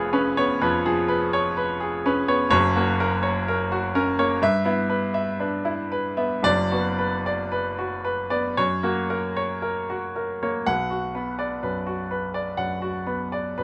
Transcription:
0.00 0.57 F1 medium
0.00 0.57 F2 medium
0.00 0.37 B3 medium
0.00 0.86 G#4 medium
0.00 0.13 B4 medium
0.00 0.37 C#5 loud
0.13 0.51 C#4 medium
0.13 0.51 B4 medium
0.37 0.76 B3 medium
0.37 0.76 C#5 medium
0.61 2.48 F2 medium
0.61 1.00 B4 medium
0.85 1.24 F3 medium
0.85 1.24 G#4 medium
1.08 1.47 B4 medium
1.33 1.71 C#5 medium
1.57 1.95 B4 medium
1.80 2.18 G#4 medium
2.06 2.43 C#4 medium
2.06 2.43 B4 medium
2.28 2.52 B3 medium
2.28 2.49 C#5 medium
2.50 4.36 F#1 medium
2.50 4.37 F#2 medium
2.50 2.90 C#5 loud
2.76 3.15 A#3 medium
2.76 3.15 F#4 medium
3.00 3.39 A#4 medium
3.23 3.61 C#5 medium
3.48 3.86 A#4 medium
3.72 4.09 F#4 medium
3.95 4.32 C#4 medium
3.95 4.32 A#4 medium
4.19 4.42 A#3 medium
4.19 4.42 C#5 medium
4.42 6.40 G2 medium
4.42 4.80 E5 loud
4.65 5.04 B3 medium
4.65 5.04 E4 medium
4.90 5.29 B4 medium
5.14 5.54 E5 medium
5.40 5.65 D4 medium
5.40 5.80 B4 medium
5.65 6.06 E4 medium
5.92 6.34 B4 medium
6.17 6.44 B3 medium
6.17 6.44 E5 medium
6.43 8.52 F#1 medium
6.43 8.53 F#2 medium
6.43 6.88 D5 loud
6.72 7.15 B3 medium
6.72 7.15 F#4 medium
6.98 7.41 B4 medium
7.26 7.68 D5 medium
7.52 7.94 B4 medium
7.79 8.20 F#4 medium
8.05 8.46 B4 medium
8.30 8.57 B3 medium
8.30 8.57 D5 medium
8.57 10.64 F#2 medium
8.57 8.99 C#5 medium
8.83 9.26 A#3 medium
8.83 9.26 F#4 medium
9.10 9.53 A#4 medium
9.37 9.79 C#5 medium
9.62 10.05 A#4 medium
9.90 10.32 F#4 medium
10.16 10.57 A#4 medium
10.43 10.67 A#3 medium
10.43 10.67 C#5 medium
10.66 12.54 B1 medium
10.66 11.05 F#5 medium
10.90 11.29 F#4 medium
11.15 11.92 B3 medium
11.15 11.54 B4 medium
11.39 11.77 D5 medium
11.63 12.39 F#2 soft
11.63 12.01 B4 medium
11.87 12.25 F#4 medium
12.11 12.49 B4 medium
12.34 12.73 D5 medium
12.57 13.36 F#2 soft
12.57 12.97 F#5 medium
12.82 13.21 F#4 medium
13.06 13.63 B3 medium
13.06 13.46 B4 medium
13.32 13.63 D5 medium
13.58 13.63 F#2 soft
13.58 13.63 B4 medium

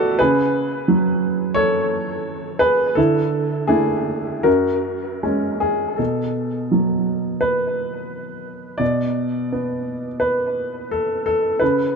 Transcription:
0.00 0.16 B2 medium
0.00 0.19 A3 medium
0.00 0.18 F#4 medium
0.00 0.19 A4 medium
0.00 0.19 B4 medium
0.00 0.21 C#5 medium
0.00 0.22 D5 medium
0.00 0.22 E5 medium
0.19 2.94 C#3 medium
0.19 1.53 G#4 medium
0.19 1.56 B4 medium
0.88 2.97 F#3 soft
1.54 2.57 A4 medium
1.54 2.60 C#5 medium
2.59 2.94 G#4 soft
2.59 2.96 B4 medium
2.95 4.42 D3 soft
2.95 3.65 E4 medium
2.95 3.68 A4 medium
3.67 4.41 A3 soft
3.67 4.41 D4 soft
3.67 4.41 E4 medium
3.67 4.45 G#4 medium
4.43 5.94 F#2 soft
4.43 5.19 F#4 soft
4.43 5.23 A#4 medium
5.23 5.94 G#3 soft
5.23 5.94 C#4 soft
5.60 5.98 G#4 medium
5.97 8.76 B2 soft
5.97 7.40 A4 soft
6.71 10.07 F#3 soft
7.41 8.80 B4 medium
8.78 11.56 B2 soft
8.78 10.19 D5 medium
9.52 11.61 B3 soft
10.20 10.91 B4 medium
10.91 11.24 A4 medium
11.26 11.60 A4 medium
11.60 11.96 C#3 soft
11.60 11.96 B4 medium

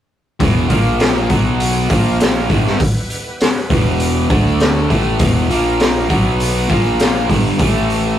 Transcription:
0.40 0.68 E1 medium
0.40 0.69 E2 medium
0.40 0.68 B2 loud
0.40 0.69 E3 medium
0.40 kick loud
0.40 open hi-hat medium
0.69 1.26 A#1 loud
0.69 1.29 A#2 medium
0.69 1.30 F3 medium
0.69 1.29 A#3 medium
0.69 1.30 A#3 loud
0.69 1.29 F4 medium
0.69 1.29 A#4 medium
0.69 kick loud
0.69 open hi-hat medium
1.00 snare loud
1.00 open hi-hat medium
1.29 1.86 B1 medium
1.29 1.89 B2 medium
1.29 1.89 F#3 medium
1.29 1.89 B3 medium
1.29 1.90 B3 medium
1.29 1.90 F#4 medium
1.29 1.90 B4 medium
1.29 kick loud
1.29 open hi-hat medium
1.60 open hi-hat medium
1.89 2.46 A#1 medium
1.89 2.49 A#2 medium
1.89 2.49 F3 medium
1.89 2.49 A#3 medium
1.89 2.49 A#4 medium
1.89 kick loud
1.89 open hi-hat medium
2.20 snare medium
2.20 open hi-hat medium
2.49 2.78 G1 medium
2.49 2.79 G2 medium
2.49 2.79 D3 loud
2.49 2.79 G3 loud
2.49 4.28 G3 medium
2.49 4.28 B3 medium
2.49 4.28 E4 medium
2.49 4.28 B4 medium
2.49 kick medium
2.49 open hi-hat soft
2.66 snare soft
2.80 kick loud
2.80 open hi-hat medium
3.10 open hi-hat medium
3.40 snare loud
3.40 open hi-hat medium
3.70 4.26 E1 medium
3.70 4.29 E2 medium
3.70 4.29 B2 medium
3.70 4.29 E3 medium
3.70 kick loud
3.70 open hi-hat medium
4.00 open hi-hat medium
4.30 4.86 D2 medium
4.30 4.89 D3 medium
4.30 4.89 A3 medium
4.30 4.90 A3 medium
4.30 4.90 D4 medium
4.30 4.90 A4 medium
4.30 kick loud
4.30 open hi-hat medium
4.60 snare loud
4.60 open hi-hat medium
4.90 5.18 A1 medium
4.90 5.19 A2 medium
4.90 5.19 E3 loud
4.90 5.50 G3 medium
4.90 5.19 A3 loud
4.90 5.49 B3 medium
4.90 5.49 E4 medium
4.90 5.49 B4 medium
4.90 kick medium
4.90 open hi-hat soft
5.19 5.48 E1 medium
5.19 5.49 E2 medium
5.19 5.49 B2 loud
5.19 5.49 E3 loud
5.19 kick loud
5.19 open hi-hat medium
5.49 6.06 A#1 medium
5.49 6.08 A#2 medium
5.49 6.09 F3 loud
5.49 6.09 A#3 medium
5.49 6.10 A#3 medium
5.49 6.09 F4 medium
5.49 6.09 A#4 medium
5.49 open hi-hat medium
5.80 snare loud
5.80 open hi-hat medium
6.09 6.66 B1 medium
6.09 6.68 B2 medium
6.09 6.68 F#3 medium
6.09 6.69 B3 loud
6.09 6.69 B3 medium
6.09 6.69 F#4 medium
6.09 6.69 B4 medium
6.09 kick loud
6.09 open hi-hat medium
6.40 open hi-hat medium
6.68 7.25 A#1 medium
6.68 7.28 A#2 medium
6.68 7.28 F3 medium
6.68 7.28 A#3 medium
6.68 7.29 A#3 medium
6.68 7.29 F4 medium
6.68 7.29 A#4 medium
6.68 kick loud
6.68 open hi-hat medium
6.99 snare loud
6.99 open hi-hat medium
7.29 7.57 G1 medium
7.29 7.58 G2 loud
7.29 7.58 D3 loud
7.29 7.59 G3 loud
7.29 kick medium
7.29 open hi-hat medium
7.58 8.19 A1 medium
7.58 8.19 A2 medium
7.58 8.19 E3 loud
7.58 8.19 A3 loud
7.58 8.19 A3 medium
7.58 8.19 E4 medium
7.58 8.19 A4 medium
7.58 kick loud
7.58 open hi-hat medium
7.90 open hi-hat medium

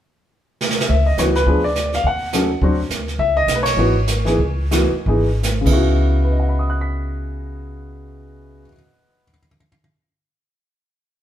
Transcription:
0.61 snare medium
0.70 snare medium
0.80 snare medium
0.89 1.16 C#2 medium
0.89 1.07 E5 medium
0.89 brush sweep soft
0.89 kick soft
1.06 1.17 D#5 medium
1.17 1.44 C#2 medium
1.17 1.33 E3 soft
1.17 1.34 B3 soft
1.17 1.34 D#4 soft
1.17 1.34 F#4 medium
1.17 1.24 C#5 medium
1.17 snare medium
1.17 hi-hat pedal medium
1.35 1.62 B4 medium
1.35 snare soft
1.46 2.01 D2 medium
1.46 1.62 F3 soft
1.46 1.62 B3 soft
1.46 1.63 D4 soft
1.46 1.63 G#4 soft
1.46 brush sweep soft
1.46 kick soft
1.64 1.94 D5 medium
1.75 snare soft
1.75 hi-hat pedal soft
1.93 2.06 F5 medium
1.93 snare soft
2.04 2.59 D#2 medium
2.04 2.59 F#5 medium
2.04 brush sweep soft
2.04 kick soft
2.33 2.48 F#3 soft
2.33 2.49 C#4 soft
2.33 2.49 D#4 soft
2.33 2.49 A4 soft
2.33 snare medium
2.33 hi-hat pedal medium
2.61 2.88 D2 medium
2.61 2.77 F#3 medium
2.61 2.77 C4 soft
2.61 2.78 D4 soft
2.61 2.78 F#4 medium
2.61 brush sweep soft
2.61 kick soft
2.89 3.16 D2 medium
2.89 snare soft
2.89 hi-hat pedal soft
3.08 snare soft
3.18 3.46 C#2 medium
3.18 3.35 E5 medium
3.18 brush sweep soft
3.18 kick soft
3.37 3.56 D#5 loud
3.46 3.75 B1 medium
3.46 snare soft
3.46 hi-hat pedal medium
3.55 3.65 B4 medium
3.63 5.37 C#5 medium
3.63 snare medium
3.63 ride medium
3.76 4.35 G#1 medium
3.76 3.93 E3 soft
3.76 3.94 B3 soft
3.76 3.94 D#4 soft
3.76 3.94 F#4 medium
3.76 brush sweep soft
4.07 snare soft
4.07 hi-hat pedal soft
4.25 4.37 E3 medium
4.25 4.38 B3 medium
4.25 4.38 D#4 soft
4.25 4.38 G#4 medium
4.25 snare soft
4.38 4.88 C#2 medium
4.38 brush sweep soft
4.38 kick soft
4.71 4.90 E3 medium
4.71 4.90 B3 soft
4.71 4.90 D#4 soft
4.71 4.90 F#4 medium
4.71 snare medium
4.71 hi-hat pedal medium
5.06 5.63 G#1 medium
5.06 5.26 E3 soft
5.06 5.26 B3 soft
5.06 5.26 D#4 soft
5.06 5.27 G#4 medium
5.06 brush sweep soft
5.06 kick soft
5.43 snare soft
5.43 hi-hat pedal soft
5.61 8.62 C#3 medium
5.61 8.65 B3 soft
5.66 8.63 C#2 medium
5.66 8.68 D#4 soft
5.66 kick soft
5.66 crash soft
5.70 8.71 E4 soft
5.70 8.74 F#4 medium
6.24 9.21 B4 soft
6.32 9.29 D#5 soft
6.40 9.37 F#5 soft
6.49 9.46 B5 soft
6.59 9.56 D#6 soft
6.70 9.67 F#6 soft
6.81 9.78 B6 soft

